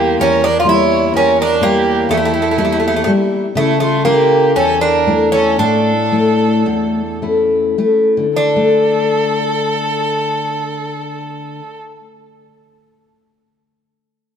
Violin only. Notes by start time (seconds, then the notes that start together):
Already playing: G4
0.21 A#4
0.44 A#4
0.58 D5
0.69 C#5
1.15 A#4
1.39 A#4
1.64 G4
2.12 E4
3.59 E4
3.83 F4
4.07 G4
4.58 A4
4.83 A#4
5.35 A4
5.60 A4
8.36 A4